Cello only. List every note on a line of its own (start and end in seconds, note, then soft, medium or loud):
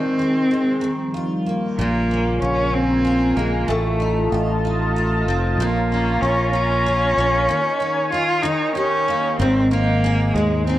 0.00 1.16 C4 medium
1.78 2.38 A#3 medium
2.42 2.75 C#4 medium
2.73 3.38 C4 medium
3.36 3.70 A#3 medium
3.69 4.40 A3 medium
5.59 6.23 A#3 medium
6.21 6.52 C#4 medium
6.52 8.08 C#4 loud
8.12 8.44 F4 medium
8.43 8.74 D#4 medium
8.75 9.35 C#4 medium
9.39 9.68 C4 medium
9.71 10.35 A#3 medium
10.34 10.66 G#3 medium
10.67 10.79 C4 medium